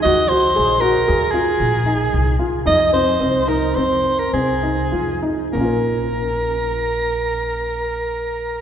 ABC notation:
X:1
M:5/4
L:1/16
Q:1/4=105
K:Bbm
V:1 name="Soprano saxophone"
e2 c4 B4 A8 z2 | e2 c4 B2 c3 B A6 z2 | B16- B4 |]
V:2 name="Felt piano"
G2 G2 A2 G2 A2 F4 E4 F2 | E2 C2 C2 E2 C4 C2 E2 F2 E2 | [B,DFB]16- [B,DFB]4 |]
V:3 name="Upright bass" clef=bass
E,,4 B,,,4 E,,2 z2 B,,,4 C,,2 z2 | F,,4 C,,4 F,,2 z2 C,,4 F,,2 z2 | B,,,16- B,,,4 |]